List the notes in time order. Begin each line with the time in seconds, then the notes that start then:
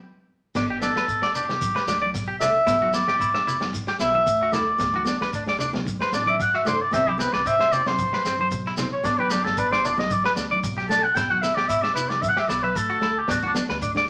0.55 G1 B3 D4, kick, snare, crash, shekere
0.70 G4
0.81 B3 D4 A4, snare, high conga, shekere
0.96 G1 B4, snare
1.08 kick, shekere
1.22 D5, snare
1.35 D4 G4, low conga, shekere
1.49 B3, snare, high conga, low conga
1.61 kick, high conga, shekere
1.76 B4, snare
1.88 D2 G3 D4, snare, shekere
2.02 D5, high conga
2.14 B1, kick, snare, shekere
2.28 G4
2.40 A3 D4 E5, snare, low conga, shekere
2.66 E1 B3 E4, kick, snare, shekere
2.82 F#4, high conga
2.93 B3 E4 D5, snare, shekere
3.08 E1 G4, snare
3.20 E4, kick, shekere
3.34 D4 E5, snare
3.47 E4, low conga, shekere
3.60 B3, snare, high conga, low conga
3.73 kick, high conga, shekere
3.87 G4, snare
3.99 B1 B3 E4 E5, snare, shekere
4.14 E5, high conga
4.26 D2, kick, shekere
4.43 F#4
4.52 A3 E4 D5, snare, low conga, shekere
4.78 D2 B3, muted clean electric guitar stroke, kick, snare, shekere
4.94 F#4, high conga
5.05 B3 D4, snare, high conga, shekere
5.21 D2 B4, snare
5.33 D4, kick, shekere
5.46 D4 D5, snare
5.59 D4, low conga, shekere
5.73 B3, snare, high conga, low conga
5.85 kick, high conga, shekere
6.00 B4 C5, snare
6.12 A1 B3 D4 D5, snare, shekere
6.26 D5 E5, high conga
6.40 G2 F#5, kick, shekere
6.54 F#4 E5, snare
6.65 A3 D4 C5, snare, low conga, shekere
6.81 D5
6.91 C2 B3 C4 E5, kick, snare, shekere
7.07 E4 G4, high conga
7.18 B3 C4 B4, snare, high conga, shekere
7.33 C2 B4 D5, snare
7.46 C4 E5, kick, shekere
7.59 D4 C5, snare
7.72 C4 D5, low conga, shekere
7.86 C4 C5, snare, high conga, low conga
7.99 kick, high conga, shekere
8.13 B4, snare
8.24 G2 C4, snare, shekere
8.39 C5, high conga
8.51 B1, kick, shekere
8.66 E4, snare
8.77 B3 C4, snare, low conga, shekere
8.92 C#5
9.04 G1 B3 D4 D5, kick, snare, shekere
9.19 G4 B4, high conga
9.30 B3 D4 G4, snare, high conga, shekere
9.44 G1 A4, snare
9.57 D4 B4, kick, shekere
9.71 D4 C5 D5, snare
9.85 D4 D5, low conga, shekere
9.97 B3 D#5, snare, high conga, low conga
10.10 D5, kick, high conga, shekere
10.24 B4, snare
10.36 D2 B3 D4, snare, shekere
10.51 D5, high conga
10.63 B1, kick, shekere
10.78 G4, snare
10.89 A3 D4 A5, snare, shekere
11.03 F#5
11.15 E1 B3 E4 G5, kick, snare, shekere
11.30 F#4 F#5, high conga
11.42 B3 E4 E5, snare, high conga, shekere
11.55 E1 G4 D5, snare
11.68 E4 E5, kick, shekere
11.82 D4 D5 E5, snare
11.94 E4 B4, low conga, shekere
12.09 B3 D5, snare, high conga, low conga
12.22 E5, kick, high conga, shekere
12.29 F#5
12.37 G4 E5, snare
12.48 B1 B3 E4 D5, snare, shekere
12.63 B4 E5, high conga
12.75 D2 A4, kick, shekere
12.90 F#4
13.01 A3 E4, snare
13.19 G4
13.28 D2 B3 D4 F#4, kick, snare, shekere
13.43 D4 F#4, high conga
13.55 B3 D4, snare, high conga, shekere
13.69 D2 B4, snare
13.82 D4, kick, shekere
13.95 D4 D5, snare